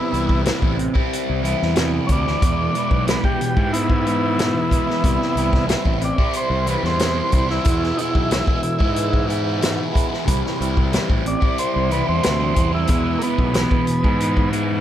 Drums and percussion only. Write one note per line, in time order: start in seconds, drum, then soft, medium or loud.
0.14 closed hi-hat medium
0.29 kick medium
0.45 snare loud
0.45 closed hi-hat medium
0.62 kick medium
0.79 closed hi-hat medium
0.95 kick medium
1.13 closed hi-hat medium
1.45 closed hi-hat medium
1.62 snare soft
1.76 snare loud
1.76 closed hi-hat medium
2.09 kick medium
2.09 closed hi-hat medium
2.27 snare soft
2.42 kick loud
2.42 closed hi-hat medium
2.75 closed hi-hat medium
2.91 kick medium
3.07 snare loud
3.07 closed hi-hat medium
3.24 kick medium
3.41 closed hi-hat medium
3.57 kick medium
3.74 closed hi-hat medium
3.90 kick medium
4.07 closed hi-hat medium
4.39 snare loud
4.39 closed hi-hat loud
4.71 kick medium
4.71 closed hi-hat medium
4.90 snare soft
5.04 kick loud
5.04 closed hi-hat medium
5.22 snare soft
5.37 closed hi-hat medium
5.53 kick medium
5.53 snare soft
5.69 snare loud
5.69 closed hi-hat medium
5.85 kick medium
6.02 closed hi-hat medium
6.18 kick medium
6.33 closed hi-hat medium
6.67 closed hi-hat medium
6.85 snare soft
6.99 snare loud
6.99 closed hi-hat medium
7.32 kick medium
7.32 closed hi-hat medium
7.50 snare soft
7.65 kick loud
7.65 closed hi-hat medium
7.83 snare soft
7.98 closed hi-hat medium
8.15 kick medium
8.31 snare loud
8.31 closed hi-hat medium
8.47 kick medium
8.63 closed hi-hat medium
8.80 kick medium
8.96 closed hi-hat medium
9.13 kick medium
9.30 closed hi-hat medium
9.62 snare loud
9.62 closed hi-hat medium
9.95 kick medium
9.95 closed hi-hat medium
10.14 snare soft
10.28 kick loud
10.28 closed hi-hat loud
10.46 snare soft
10.62 closed hi-hat medium
10.77 kick medium
10.93 snare loud
10.93 closed hi-hat medium
11.10 kick medium
11.26 closed hi-hat medium
11.42 kick medium
11.58 closed hi-hat medium
11.91 closed hi-hat medium
12.23 snare loud
12.23 closed hi-hat medium
12.56 kick medium
12.56 closed hi-hat medium
12.87 kick loud
12.87 closed hi-hat medium
13.21 closed hi-hat medium
13.38 kick medium
13.54 snare loud
13.54 closed hi-hat medium
13.71 kick medium
13.87 closed hi-hat medium
14.04 kick medium
14.20 closed hi-hat medium
14.37 kick medium
14.53 closed hi-hat medium